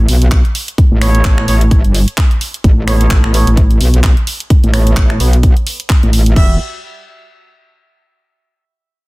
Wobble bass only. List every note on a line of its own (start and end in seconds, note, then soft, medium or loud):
0.08 0.43 B1 loud
0.91 1.23 A1 loud
1.25 1.46 A1 medium
1.48 1.82 A1 loud
1.84 2.06 G1 loud
2.64 3.09 A1 medium
3.11 3.22 A1 loud
3.24 3.45 A1 loud
3.47 3.79 A1 medium
3.81 4.15 B1 loud
4.64 4.95 A1 loud
4.97 5.19 A1 medium
5.20 5.54 B1 loud
6.03 6.35 A1 loud
6.36 6.58 E1 loud